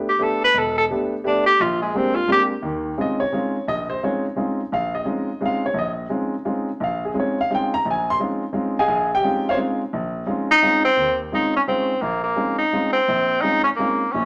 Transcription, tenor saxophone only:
0.09 0.24 G4 medium
0.23 0.42 A4 medium
0.44 0.60 B4 loud
0.58 0.77 A4 loud
0.78 0.85 A4 loud
1.27 1.45 D4 medium
1.46 1.63 G4 loud
1.61 1.81 F4 loud
1.82 1.98 G#3 medium
1.96 2.17 C4 medium
2.15 2.28 F4 loud
2.32 2.43 G4 loud
10.51 10.83 D#4 loud
10.85 11.17 C4 loud
11.34 11.54 D#4 loud
11.56 11.62 C#4 medium
11.68 12.03 C4 medium
12.01 12.23 A#3 medium
12.23 12.56 A#3 medium
12.58 12.91 D#4 medium
12.93 13.43 C4 loud
13.41 13.63 D#4 loud
13.64 13.70 C#4 medium
13.76 14.14 A#3 medium
14.12 14.25 C#4 medium

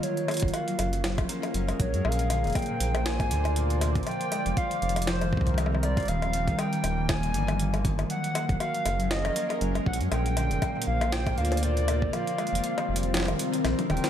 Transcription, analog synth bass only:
0.43 0.50 F#1 loud
0.79 1.24 F#1 medium
1.54 1.73 F#1 loud
1.80 1.95 A#1 medium
1.94 2.02 F#2 medium
2.05 2.46 A#1 loud
2.44 2.52 F1 loud
2.81 3.32 A#1 medium
3.31 4.01 D2 loud
4.46 4.54 F1 medium
4.82 5.34 F1 loud
5.33 6.03 C2 loud
6.08 6.49 D#1 medium
6.48 6.55 A#1 medium
6.84 7.36 D#1 medium
7.34 8.05 G1 loud
8.49 8.57 F#1 loud
8.86 9.31 F#1 medium
9.61 9.80 F#1 loud
9.86 10.02 A#1 loud
10.01 10.08 F#2 medium
10.12 10.52 A#1 loud
10.51 10.59 F1 loud
10.87 11.39 A#1 medium
11.38 12.08 D2 loud
12.53 12.61 F1 medium
12.89 13.34 F1 medium
13.65 13.75 A#1 medium
13.90 14.00 D#1 medium

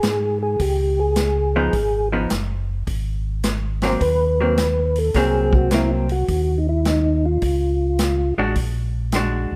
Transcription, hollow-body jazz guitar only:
1.56 1.72 F3 medium
1.56 1.72 B3 medium
1.56 1.73 D#4 medium
2.12 2.29 F3 medium
2.12 2.29 B3 medium
2.12 2.29 D#4 medium
3.83 4.00 F#3 medium
3.83 4.00 A#3 medium
3.83 4.00 C4 medium
4.41 4.57 F#3 medium
4.41 4.57 A#3 medium
4.41 4.57 C4 medium
5.16 5.70 F#3 medium
5.16 5.70 A#3 medium
5.16 5.71 C4 medium
5.73 6.06 F#3 medium
5.73 6.07 A#3 medium
5.73 6.07 C4 medium
8.38 8.54 G#3 medium
8.38 8.55 D4 medium
8.38 8.55 F#4 medium
9.15 9.56 G#3 soft
9.15 9.56 D4 medium
9.15 9.56 F#4 medium

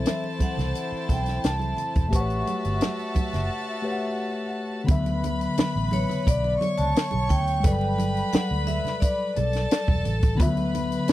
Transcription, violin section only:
0.00 2.09 E4 medium
0.00 2.09 C5 medium
0.00 2.09 A5 medium
2.12 4.85 F#4 medium
2.12 4.85 E5 medium
2.12 4.85 A5 medium
4.89 6.57 B4 medium
4.89 6.58 B5 loud
6.61 7.62 C#5 medium
6.61 7.63 C#6 loud
7.65 9.33 B4 medium
7.65 9.33 B5 loud
9.36 10.37 A4 medium
9.36 10.37 A5 loud
10.40 11.12 B4 loud
10.40 11.12 B5 loud

